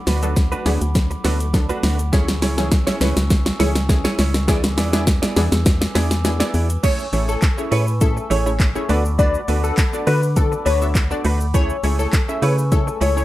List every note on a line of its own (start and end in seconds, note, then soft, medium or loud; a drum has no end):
0.00 2.09 A3 medium
0.00 2.10 F#5 medium
0.00 2.10 B5 medium
0.00 2.10 D6 medium
0.06 0.54 D2 loud
0.06 0.22 A3 medium
0.06 0.22 D4 medium
0.06 0.21 F#4 medium
0.06 0.21 B4 medium
0.06 snare loud
0.06 open hi-hat medium
0.06 shaker medium
0.22 0.57 F#3 medium
0.22 0.35 A3 medium
0.22 0.57 B3 medium
0.22 0.57 D4 medium
0.22 0.35 D4 medium
0.22 0.36 F#4 medium
0.22 0.57 A4 loud
0.22 0.36 B4 medium
0.22 closed hi-hat medium
0.22 shaker medium
0.36 muted clean electric guitar stroke soft
0.36 kick loud
0.36 snare loud
0.36 shaker medium
0.52 0.64 A3 medium
0.52 0.65 D4 medium
0.52 0.65 F#4 medium
0.52 0.65 B4 medium
0.52 closed hi-hat medium
0.52 shaker medium
0.65 0.78 D2 loud
0.65 1.13 F#3 medium
0.65 0.83 A3 medium
0.65 1.13 B3 medium
0.65 1.13 D4 medium
0.65 0.81 D4 medium
0.65 0.81 F#4 medium
0.65 1.13 G#4 loud
0.65 0.80 B4 medium
0.65 snare loud
0.65 open hi-hat medium
0.65 shaker medium
0.81 1.16 D2 medium
0.81 muted clean electric guitar stroke soft
0.81 closed hi-hat medium
0.81 shaker medium
0.95 kick loud
0.95 snare loud
0.95 shaker medium
1.11 muted clean electric guitar stroke soft
1.11 closed hi-hat soft
1.11 shaker soft
1.24 1.72 D2 medium
1.24 1.48 F#3 medium
1.24 1.46 A3 medium
1.24 1.48 B3 medium
1.24 1.40 D4 medium
1.24 1.48 D4 medium
1.24 1.39 F#4 loud
1.24 1.48 A4 medium
1.24 1.39 B4 loud
1.24 snare loud
1.24 open hi-hat medium
1.24 shaker medium
1.40 muted clean electric guitar stroke soft
1.40 closed hi-hat medium
1.40 shaker medium
1.54 2.01 F#3 medium
1.54 2.01 B3 medium
1.54 2.01 D4 medium
1.54 2.01 A4 loud
1.54 muted clean electric guitar stroke soft
1.54 kick loud
1.54 snare loud
1.54 shaker medium
1.69 1.82 A3 medium
1.69 1.83 D4 medium
1.69 1.83 F#4 medium
1.69 1.83 B4 medium
1.69 closed hi-hat medium
1.69 shaker medium
1.83 2.44 D2 loud
1.83 2.00 A3 medium
1.83 1.99 D4 medium
1.83 1.98 F#4 medium
1.83 1.98 B4 medium
1.83 snare loud
1.83 open hi-hat medium
1.83 shaker soft
1.99 muted clean electric guitar stroke soft
1.99 closed hi-hat medium
1.99 shaker medium
2.12 2.48 E3 medium
2.12 2.48 A3 medium
2.12 4.46 A3 medium
2.12 2.34 C#4 medium
2.12 2.48 C#4 medium
2.12 2.28 E4 medium
2.12 2.48 G#4 loud
2.12 2.28 G#4 medium
2.12 2.27 C#5 medium
2.12 6.80 G#5 medium
2.12 4.46 C#6 medium
2.12 6.79 E6 medium
2.12 kick loud
2.12 snare loud
2.12 shaker medium
2.28 muted clean electric guitar stroke soft
2.28 snare loud
2.28 closed hi-hat soft
2.28 shaker soft
2.42 2.90 C#2 loud
2.42 2.58 C#4 medium
2.42 2.57 E4 medium
2.42 2.57 G#4 medium
2.42 2.56 C#5 medium
2.42 snare loud
2.42 open hi-hat medium
2.42 shaker medium
2.57 2.92 E3 medium
2.57 2.92 A3 medium
2.57 2.92 C#4 medium
2.57 2.70 C#4 medium
2.57 2.70 E4 medium
2.57 2.71 G#4 medium
2.57 2.92 G#4 loud
2.57 2.71 C#5 medium
2.57 snare loud
2.57 closed hi-hat medium
2.57 shaker medium
2.71 muted clean electric guitar stroke medium
2.71 kick loud
2.71 snare loud
2.71 shaker medium
2.87 2.99 C#4 medium
2.87 3.00 E4 medium
2.87 3.00 G#4 medium
2.87 3.01 C#5 medium
2.87 snare loud
2.87 closed hi-hat medium
2.87 shaker medium
3.01 3.14 C#2 loud
3.01 3.48 E3 medium
3.01 3.48 A3 medium
3.01 3.18 C#4 medium
3.01 3.48 C#4 medium
3.01 3.16 E4 medium
3.01 3.16 G#4 medium
3.01 3.48 B4 medium
3.01 3.15 C#5 medium
3.01 snare loud
3.01 open hi-hat medium
3.01 shaker medium
3.16 3.52 C#2 medium
3.16 muted clean electric guitar stroke medium
3.16 snare loud
3.16 closed hi-hat medium
3.16 shaker medium
3.30 kick loud
3.30 snare loud
3.30 shaker medium
3.46 muted clean electric guitar stroke soft
3.46 snare loud
3.46 closed hi-hat medium
3.46 shaker medium
3.59 4.07 C#2 medium
3.59 3.83 E3 medium
3.59 3.83 A3 medium
3.59 3.81 C#4 medium
3.59 3.83 C#4 medium
3.59 3.75 E4 medium
3.59 3.83 G#4 loud
3.59 3.74 G#4 medium
3.59 3.74 C#5 medium
3.59 snare loud
3.59 open hi-hat medium
3.59 shaker medium
3.75 muted clean electric guitar stroke soft
3.75 snare loud
3.75 closed hi-hat medium
3.75 shaker medium
3.89 4.36 E3 medium
3.89 4.36 A3 medium
3.89 4.36 C#4 medium
3.89 4.36 G#4 loud
3.89 muted clean electric guitar stroke soft
3.89 kick loud
3.89 snare loud
3.89 shaker medium
4.04 4.17 C#4 medium
4.04 4.18 E4 medium
4.04 4.18 G#4 medium
4.04 4.18 C#5 medium
4.04 snare loud
4.04 closed hi-hat medium
4.04 shaker medium
4.18 4.79 C#2 loud
4.18 4.35 C#4 medium
4.18 4.34 E4 medium
4.18 4.33 G#4 medium
4.18 4.33 C#5 medium
4.18 snare loud
4.18 open hi-hat medium
4.18 shaker soft
4.34 muted clean electric guitar stroke soft
4.34 snare loud
4.34 closed hi-hat medium
4.34 shaker medium
4.48 4.83 E3 medium
4.48 4.69 B3 medium
4.48 4.83 B3 medium
4.48 4.83 D4 medium
4.48 4.63 E4 medium
4.48 4.83 G#4 loud
4.48 4.63 G#4 loud
4.48 6.81 B4 medium
4.48 4.62 D5 medium
4.48 6.81 D6 medium
4.48 kick loud
4.48 snare loud
4.48 shaker medium
4.63 muted clean electric guitar stroke medium
4.63 snare loud
4.63 closed hi-hat soft
4.63 shaker soft
4.77 5.25 E2 loud
4.77 4.93 B3 medium
4.77 4.92 E4 medium
4.77 4.92 G#4 medium
4.77 4.91 D5 medium
4.77 snare loud
4.77 open hi-hat medium
4.77 shaker medium
4.93 5.27 E3 medium
4.93 5.27 B3 medium
4.93 5.05 B3 medium
4.93 5.28 D4 medium
4.93 5.06 E4 medium
4.93 5.06 G#4 medium
4.93 5.28 G#4 loud
4.93 5.06 D5 medium
4.93 snare loud
4.93 closed hi-hat medium
4.93 shaker medium
5.07 kick loud
5.07 snare loud
5.07 shaker medium
5.22 5.35 B3 medium
5.22 5.35 E4 medium
5.22 5.36 G#4 medium
5.22 5.36 D5 medium
5.22 snare loud
5.22 closed hi-hat medium
5.22 shaker medium
5.36 5.49 E2 medium
5.36 5.83 E3 medium
5.36 5.53 B3 medium
5.36 5.83 B3 medium
5.36 5.84 D4 medium
5.36 5.51 E4 medium
5.36 5.84 G#4 loud
5.36 5.51 G#4 medium
5.36 5.50 D5 medium
5.36 snare loud
5.36 open hi-hat medium
5.36 shaker medium
5.52 5.87 E2 medium
5.52 muted clean electric guitar stroke soft
5.52 snare loud
5.52 closed hi-hat medium
5.52 shaker medium
5.66 kick loud
5.66 snare loud
5.66 shaker medium
5.81 muted clean electric guitar stroke medium
5.81 snare loud
5.81 closed hi-hat medium
5.81 shaker medium
5.95 6.43 E2 medium
5.95 6.19 E3 medium
5.95 6.16 B3 medium
5.95 6.19 B3 medium
5.95 6.19 D4 medium
5.95 6.10 E4 medium
5.95 6.19 G#4 medium
5.95 6.10 G#4 medium
5.95 6.09 D5 medium
5.95 snare loud
5.95 open hi-hat medium
5.95 shaker medium
6.11 snare loud
6.11 closed hi-hat medium
6.11 shaker medium
6.24 6.72 E3 loud
6.24 6.72 B3 medium
6.24 6.72 D4 medium
6.24 6.72 G#4 loud
6.24 muted clean electric guitar stroke soft
6.24 snare loud
6.24 shaker medium
6.40 6.52 B3 medium
6.40 6.53 E4 medium
6.40 6.53 G#4 medium
6.40 6.54 D5 medium
6.40 snare loud
6.40 closed hi-hat medium
6.40 shaker medium
6.54 6.78 E2 loud
6.54 6.71 B3 medium
6.54 6.69 E4 medium
6.54 6.69 G#4 medium
6.54 6.68 D5 medium
6.54 open hi-hat medium
6.54 shaker soft
6.69 muted clean electric guitar stroke medium
6.69 closed hi-hat medium
6.69 shaker medium
6.83 7.04 A3 medium
6.83 7.07 A3 medium
6.83 13.25 A3 medium
6.83 7.07 C#4 medium
6.83 7.07 E4 medium
6.83 7.05 E4 medium
6.83 7.07 G#4 medium
6.83 7.05 G#4 loud
6.83 6.94 C#5 loud
6.83 7.07 C#5 medium
6.83 7.05 C#5 loud
6.83 8.87 G#5 medium
6.83 8.87 C#6 medium
6.83 8.87 E6 medium
6.83 kick loud
6.83 closed hi-hat medium
6.83 crash loud
6.83 shaker medium
6.99 shaker soft
7.13 7.37 A1 medium
7.13 7.28 A3 medium
7.13 7.48 A3 medium
7.13 7.48 C#4 medium
7.13 7.48 E4 medium
7.13 7.28 E4 medium
7.13 7.48 G#4 medium
7.13 7.27 G#4 medium
7.13 7.48 C#5 medium
7.13 7.27 C#5 medium
7.13 open hi-hat medium
7.13 shaker medium
7.28 7.44 A3 medium
7.28 7.44 E4 medium
7.28 7.44 G#4 medium
7.28 7.49 A4 medium
7.28 7.44 C#5 medium
7.28 shaker medium
7.42 kick loud
7.42 clap loud
7.42 closed hi-hat medium
7.42 shaker medium
7.57 7.92 A3 medium
7.57 7.92 C#4 medium
7.57 7.92 E4 medium
7.57 7.92 G#4 medium
7.57 7.93 C#5 medium
7.57 muted clean electric guitar stroke soft
7.57 shaker medium
7.71 8.19 A2 medium
7.71 7.93 A3 medium
7.71 7.87 E4 medium
7.71 7.86 G#4 medium
7.71 7.82 B4 medium
7.71 7.86 C#5 loud
7.71 open hi-hat medium
7.71 shaker medium
7.87 muted clean electric guitar stroke soft
7.87 shaker medium
8.01 8.36 A3 medium
8.01 8.36 C#4 medium
8.01 8.36 E4 medium
8.01 8.36 G#4 medium
8.01 8.21 A4 medium
8.01 8.36 E5 medium
8.01 muted clean electric guitar stroke soft
8.01 kick loud
8.01 closed hi-hat medium
8.01 shaker medium
8.16 muted clean electric guitar stroke soft
8.16 shaker medium
8.30 8.78 A1 loud
8.30 8.51 A3 medium
8.30 8.46 E4 medium
8.30 8.45 G#4 medium
8.30 8.41 C#5 medium
8.30 8.45 C#5 medium
8.30 open hi-hat medium
8.30 shaker medium
8.46 8.69 A3 medium
8.46 8.69 C#4 medium
8.46 8.69 E4 medium
8.46 8.69 G#4 medium
8.46 8.69 C#5 medium
8.46 muted clean electric guitar stroke soft
8.46 shaker medium
8.60 kick loud
8.60 clap loud
8.60 closed hi-hat medium
8.60 shaker medium
8.75 8.89 A3 loud
8.75 8.89 C#4 medium
8.75 8.89 E4 medium
8.75 8.89 G#4 medium
8.75 8.90 C#5 loud
8.75 muted clean electric guitar stroke soft
8.75 shaker medium
8.89 9.37 D2 loud
8.89 9.10 A3 medium
8.89 9.37 B3 loud
8.89 9.37 D4 medium
8.89 9.04 D4 medium
8.89 9.37 F#4 medium
8.89 9.04 F#4 medium
8.89 9.37 A4 medium
8.89 9.03 B4 medium
8.89 9.37 D5 loud
8.89 11.52 F#5 medium
8.89 11.52 B5 medium
8.89 11.52 D6 medium
8.89 open hi-hat medium
8.89 shaker medium
9.05 muted clean electric guitar stroke soft
9.05 shaker medium
9.18 9.40 A3 medium
9.18 9.40 D4 medium
9.18 9.40 F#4 medium
9.18 9.40 B4 medium
9.18 9.29 D5 loud
9.18 kick loud
9.18 closed hi-hat medium
9.18 shaker medium
9.34 shaker soft
9.48 9.72 D2 medium
9.48 9.64 A3 medium
9.48 9.83 B3 medium
9.48 9.83 D4 medium
9.48 9.63 D4 medium
9.48 9.83 F#4 medium
9.48 9.63 F#4 medium
9.48 9.83 A4 medium
9.48 9.62 B4 medium
9.48 9.83 D5 medium
9.48 open hi-hat medium
9.48 shaker medium
9.63 9.80 A3 medium
9.63 9.79 D4 medium
9.63 9.79 F#4 medium
9.63 9.84 A4 medium
9.63 9.79 B4 medium
9.63 shaker medium
9.77 kick loud
9.77 clap loud
9.77 closed hi-hat medium
9.77 shaker medium
9.93 10.28 B3 medium
9.93 10.28 D4 medium
9.93 10.28 F#4 medium
9.93 10.28 A4 medium
9.93 10.28 D5 medium
9.93 muted clean electric guitar stroke soft
9.93 shaker medium
10.07 10.55 D3 loud
10.07 10.28 A3 medium
10.07 10.22 D4 medium
10.07 10.22 F#4 loud
10.07 10.18 B4 medium
10.07 10.21 B4 loud
10.07 open hi-hat medium
10.07 shaker medium
10.22 muted clean electric guitar stroke medium
10.22 shaker medium
10.36 10.71 B3 medium
10.36 10.72 D4 medium
10.36 10.72 F#4 medium
10.36 10.57 A4 medium
10.36 10.72 A4 medium
10.36 10.72 D5 medium
10.36 muted clean electric guitar stroke soft
10.36 kick loud
10.36 closed hi-hat medium
10.36 shaker medium
10.52 muted clean electric guitar stroke medium
10.52 shaker medium
10.66 11.13 D2 loud
10.66 10.87 A3 medium
10.66 10.81 D4 medium
10.66 10.81 F#4 medium
10.66 10.80 B4 loud
10.66 10.77 C#5 medium
10.66 open hi-hat medium
10.66 shaker medium
10.81 11.04 B3 medium
10.81 11.04 D4 medium
10.81 11.04 F#4 medium
10.81 11.04 A4 medium
10.81 11.04 E5 medium
10.81 muted clean electric guitar stroke medium
10.81 shaker medium
10.95 kick loud
10.95 clap loud
10.95 closed hi-hat medium
10.95 shaker medium
11.11 11.45 B3 medium
11.11 11.45 D4 medium
11.11 11.45 F#4 medium
11.11 11.45 A4 medium
11.11 11.46 D5 loud
11.11 muted clean electric guitar stroke medium
11.11 shaker medium
11.24 11.72 D2 loud
11.24 11.46 A3 medium
11.24 11.40 D4 medium
11.24 11.40 F#4 medium
11.24 11.39 B4 medium
11.24 open hi-hat medium
11.24 shaker soft
11.40 muted clean electric guitar stroke medium
11.40 shaker medium
11.54 11.75 A3 medium
11.54 11.78 A3 medium
11.54 11.78 C#4 medium
11.54 11.78 E4 medium
11.54 11.75 E4 loud
11.54 11.78 G#4 medium
11.54 11.76 G#4 loud
11.54 11.65 C#5 loud
11.54 11.78 C#5 medium
11.54 11.76 C#5 loud
11.54 13.25 G#5 medium
11.54 13.25 C#6 medium
11.54 13.25 E6 medium
11.54 kick loud
11.54 closed hi-hat medium
11.54 shaker medium
11.70 shaker medium
11.83 12.07 C#2 loud
11.83 11.99 A3 medium
11.83 12.19 A3 medium
11.83 12.19 C#4 medium
11.83 11.99 E4 medium
11.83 12.19 E4 medium
11.83 12.19 G#4 medium
11.83 11.98 G#4 medium
11.83 12.19 C#5 medium
11.83 11.98 C#5 medium
11.83 open hi-hat medium
11.83 shaker medium
11.99 12.15 A3 medium
11.99 12.15 E4 medium
11.99 12.15 G#4 medium
11.99 12.19 A4 medium
11.99 12.14 C#5 medium
11.99 shaker medium
12.13 kick loud
12.13 clap loud
12.13 closed hi-hat medium
12.13 shaker medium
12.28 12.63 A3 medium
12.28 12.63 C#4 medium
12.28 12.63 E4 medium
12.28 12.63 G#4 medium
12.28 12.63 E5 medium
12.28 muted clean electric guitar stroke soft
12.28 shaker medium
12.42 12.90 C#3 loud
12.42 12.63 A3 medium
12.42 12.57 E4 medium
12.42 12.57 G#4 medium
12.42 12.53 B4 medium
12.42 12.57 C#5 loud
12.42 open hi-hat medium
12.42 shaker medium
12.58 muted clean electric guitar stroke medium
12.58 shaker medium
12.72 13.07 A3 medium
12.72 13.07 C#4 medium
12.72 13.07 E4 medium
12.72 13.07 G#4 medium
12.72 12.92 A4 medium
12.72 13.07 C#5 medium
12.72 muted clean electric guitar stroke soft
12.72 kick loud
12.72 closed hi-hat medium
12.72 shaker medium
12.87 muted clean electric guitar stroke medium
12.87 shaker medium
13.01 13.25 C#2 loud
13.01 13.22 A3 medium
13.01 13.16 E4 medium
13.01 13.16 G#4 medium
13.01 13.12 C#5 medium
13.01 13.15 C#5 loud
13.01 open hi-hat medium
13.01 shaker medium
13.17 13.25 A3 medium
13.17 13.25 C#4 medium
13.17 13.25 E4 medium
13.17 13.25 G#4 medium
13.17 13.25 C#5 medium
13.17 muted clean electric guitar stroke medium
13.17 shaker medium